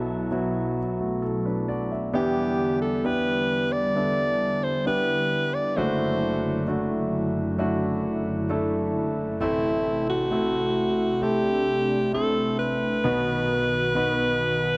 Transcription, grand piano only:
Already playing: B1 B2 F#3 B3 E4 F#4 A4
0.31 F#3 B3 E4 F#4
1.00 A3 F#4
1.22 A4
1.45 D4 B4
1.68 F#4 D5
1.92 E5
2.14 E2 E3 B3 D4 E4 G4
3.04 B3 D4 E4 G4
3.95 B3 D4 E4 A4
4.86 B3 D4 E4 G4
5.77 F#1 F#2 A3 D4 E4 F#4
6.68 A3 D4 E4 F#4
7.58 A3 D4 E4 F#4
8.49 A3 D4 E4 A4
9.41 A1 A2 A3 C4 E4 A4
10.31 A3 C4 E4 A4
11.22 A3 C4 E4 A4
12.13 A3 C4 E4 A4
13.04 B1 B2 B3 D#4 F#4 B4
13.95 B3 D#4 F#4 B4

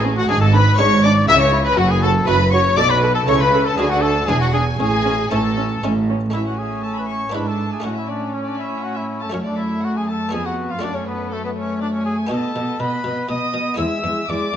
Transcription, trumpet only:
0.17 F#4
0.29 G#4
0.41 A4
0.54 B4
0.79 C#5
1.05 D5
1.29 E5
1.41 C#5
1.66 B4
1.78 F#4
1.91 G#4
2.03 A4
2.29 B4
2.53 C#5
2.78 D5
2.91 B4
3.15 A4
3.28 C#5
3.42 B4
3.65 A4
3.77 G#4
3.90 F#4
4.02 A4
4.28 G#4
4.41 F#4
4.53 G#4
4.80 G#4
5.31 A4
6.33 E4
6.46 F#4
6.59 G#4
6.85 A4
6.99 B4
7.09 C#5
7.34 B4
7.48 A4
7.73 G#4
7.85 F#4
7.98 E4
8.10 D4
8.34 C#4
8.48 D4
8.59 E4
8.83 F#4
8.97 E4
9.22 A4
9.33 C#4
9.47 D4
9.58 E4
9.85 F#4
9.98 G#4
10.10 A4
10.34 G#4
10.46 F#4
10.71 F4
10.83 D4
10.95 C#4
11.07 B3
11.33 A3
11.45 B3
11.57 C#4
11.82 D4
11.93 C#4
12.06 G#4
12.33 A4
12.80 B4
13.30 D#5
13.78 E5
14.29 D5

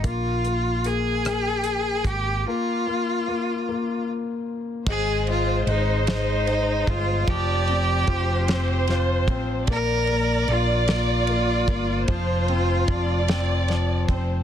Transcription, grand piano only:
0.03 A#3
0.45 A#3
0.86 A#3
1.27 A#3
2.48 A#3
2.87 A#3
3.28 A#3
3.69 A#3
4.88 G#3
5.29 G#3
5.68 G#3
6.48 G#3
6.89 G#3
7.29 F3
7.69 C4
8.09 F4
8.50 C4
8.90 F4
9.30 C4
9.70 A#3
10.09 A#3
10.47 A#3
10.89 A#3
11.29 A#3
11.69 A#3
12.08 F3
12.49 C4
12.88 F3
13.30 C4
13.70 F3
14.09 C4

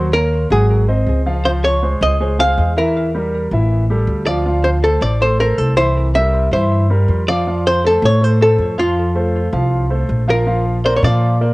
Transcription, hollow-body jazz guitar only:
Already playing: C5
0.13 A#4
0.52 G#4
1.45 C5
1.65 C#5
2.03 D#5
2.40 F5
2.78 A#4
4.27 D5
4.64 C5
4.84 A4
5.02 D5
5.22 C5
5.40 A#4
5.58 A4
5.77 C5
6.15 E5
6.53 C5
7.28 D5
7.67 C5
7.87 A4
8.05 C#5
8.24 C5
8.42 A4
8.79 F4
10.30 A#4
10.86 C5
10.96 C#5
11.04 D5

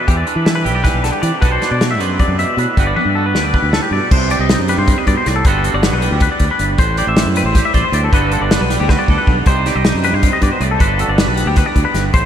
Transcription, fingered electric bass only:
0.08 E2
0.36 E3
0.65 B1
0.94 B1
1.23 E3
1.42 B1
1.71 B2
1.99 F#2
2.28 F#2
2.57 B2
2.77 G1
3.05 G2
3.34 D2
3.62 D2
3.91 G2
4.11 C2
4.39 C2
4.59 F#2
4.78 G2
5.07 G2
5.26 C2
5.45 G1
5.74 G1
5.92 B1
6.11 D2
6.40 D2
6.59 G1
6.78 A1
7.07 A1
7.26 F#2
7.44 A1
7.74 A1
7.92 D2
8.13 G1
8.41 G1
8.61 B1
8.80 D2
9.08 D2
9.27 B1
9.46 C2
9.75 C2
9.94 F#2
10.13 G2
10.42 G2
10.60 C2
10.80 G1
11.08 G1
11.27 B1
11.46 D2
11.76 D2
11.94 G1
12.14 A1

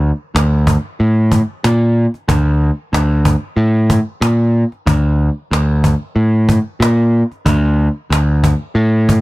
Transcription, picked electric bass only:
Already playing: D2
0.35 D2
1.00 A2
1.64 A#2
2.28 D2
2.93 D2
3.57 A2
4.21 A#2
4.86 D2
5.51 D2
6.16 A2
6.80 A#2
7.46 D2
8.10 D2
8.75 A2

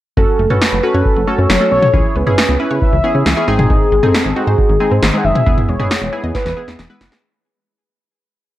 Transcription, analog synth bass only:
0.17 F#1
0.39 F#1
0.72 F#1
0.94 F#2
1.16 F#1
1.38 F#2
1.49 F#1
1.71 B1
1.94 C#2
2.15 C#2
2.49 C#2
2.71 C#3
2.93 C#2
3.15 C#3
3.26 C#2
3.48 G#1
3.92 G#1
4.25 G#1
4.47 G#2
4.69 G#1
4.91 G#2
5.02 G#1
5.24 F#1
5.47 E1
5.68 E1
6.02 E1
6.24 E2
6.46 E1
6.68 E2
6.79 E1
7.01 F#1

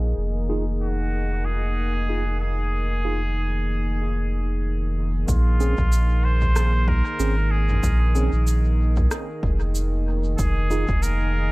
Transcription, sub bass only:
Already playing: A#1
0.17 F1
5.28 A#1
5.78 A#1
7.19 G#1
7.83 A#1
8.33 A#1
9.43 F1
10.39 F1
10.88 F1

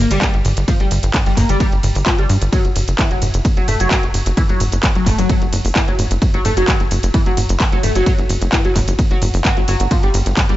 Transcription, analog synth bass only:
0.11 G1
0.34 G1
0.45 G1
0.57 G1
0.80 G1
0.91 G1
1.03 G1
1.26 G1
1.37 G1
1.49 G1
1.72 G1
1.83 G1
1.95 G1
2.18 G1
2.29 G2
2.42 G1
2.65 F#1
2.76 F#1
2.88 F#1
3.11 F#1
3.22 F#1
3.34 F#1
3.57 F#1
3.68 F#1
3.80 F#1
4.03 F#1
4.14 F#1
4.26 F#1
4.49 F#1
4.60 F#1
4.72 F#1
4.95 F#1
5.06 F#1
5.18 F#1
5.42 F#1
5.53 F#1
5.65 F#1
5.88 F#1
5.99 F#1
6.11 F#1
6.34 F#1
6.45 F#1
6.57 F#1
6.80 F#1
6.91 F#1
7.03 F#1
7.26 F#1
7.37 F#1
7.49 F#1
7.72 F#1
7.83 F#1
7.95 F#1
8.18 F#1
8.29 F#1
8.41 F#1
8.65 F#1
8.76 F#1
8.88 F#1
9.11 F#1
9.22 F#1
9.34 F#1
9.57 G1
9.68 G1
9.80 G1
10.03 G1
10.14 G1
10.26 G1
10.49 G1

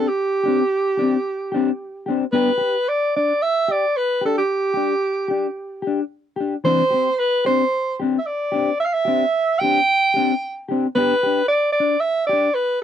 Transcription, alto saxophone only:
0.08 G4
2.32 B4
2.89 D5
3.16 D5
3.42 E5
3.71 D5
3.97 B4
4.25 A4
4.38 G4
6.65 C5
7.20 B4
7.46 C5
8.18 E5
8.26 D5
8.80 E5
8.85 F5
8.93 E5
9.59 G5
10.95 B4
11.48 D5
11.72 D5
12.00 E5
12.27 D5
12.55 B4

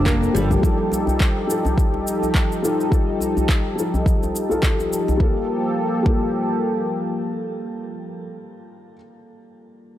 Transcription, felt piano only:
Already playing: G3 A#3 F4 A4
0.34 G3 A#3 F4 A4
0.61 G3 D#4 F4
0.66 A4
1.47 G3 D#4 F4 A4
2.63 G3 D#4 F4 A4
2.90 G3 D#4 F4 A4
3.76 G3 D#4 F4 A4
4.49 G3 D#4 F4 A4
4.62 G3 D#4 F4 A4
5.17 G3 A#3
5.21 F4 A4
6.03 G3 A#3 F4
6.09 A4

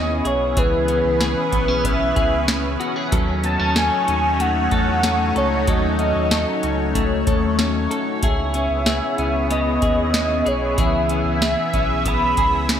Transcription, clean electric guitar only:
Already playing: B3 C#4 G#4
0.25 G#4
0.57 E3 G#4
0.89 C#4
1.21 G#4
1.52 B3
1.68 C#4
1.84 B3
2.16 G#4
2.48 C#4
2.80 F#4
2.96 G#4
3.12 F#3 A4
3.44 B3
3.59 C#4
3.76 A4
4.08 C#4
4.40 A3
4.72 A4
5.04 C#4
5.36 A4
5.67 F#3 A4
5.99 C#4
6.31 A4
6.63 C#4
6.95 A3
7.27 A4
7.59 C#4
7.91 A4
8.23 G#4
8.55 C#4
8.87 G#4
9.19 C#4
9.50 B3
9.82 G#4
10.14 C#4
10.46 G#4
10.78 E3 G#4
11.10 C#4
11.42 G#4
11.74 C#4
12.06 B3
12.38 G#4
12.70 C#4

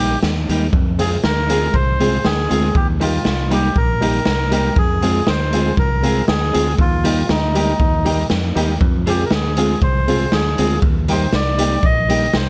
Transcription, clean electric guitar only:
0.00 G3 A#3 D#4 G4
0.49 G3 A#3 D#4 G4
1.00 G#3 C4 F4 G#4
1.50 G#3 C4 F4 G#4
2.00 G#3 C4 F4 G#4
2.24 muted clean electric guitar stroke
2.50 G#3 C4 F4 G#4
3.00 G3 A#3 D#4 G4
3.51 G3 A#3 D#4 G4
4.02 G3 A#3 D#4 G4
4.26 muted clean electric guitar stroke
4.52 G3 A#3 D#4 G4
5.03 G#3 C4 F4 G#4
5.53 G#3 C4 F4 G#4
6.04 G#3 C4 F4 G#4
6.53 G#3 C4 F4 G#4
7.04 G3 A#3 D#4 G4
7.55 G3 A#3 D#4 G4
8.05 G3 A#3 D#4 G4
8.30 muted clean electric guitar stroke
8.56 G3 A#3 D#4 G4
9.06 G#3 C4 F4 G#4
9.57 G#3 C4 F4 G#4
10.08 G#3 C4 F4 G#4
10.32 muted clean electric guitar stroke
10.58 G#3 C4 F4 G#4
11.08 G3 A#3 D#4 G4
11.58 G3 A#3 D#4 G4
12.09 G3 A#3 D#4 G4
12.33 muted clean electric guitar stroke

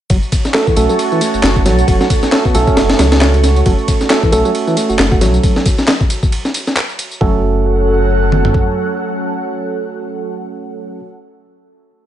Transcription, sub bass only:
0.10 F#1
0.77 B1
1.34 F#1
1.43 F#1
1.66 B1
1.88 F#1
2.55 B1
2.77 F#1
2.99 C#2
3.66 F#1
4.32 B1
4.89 F#1
4.99 F#1
5.21 B1
7.21 F#1

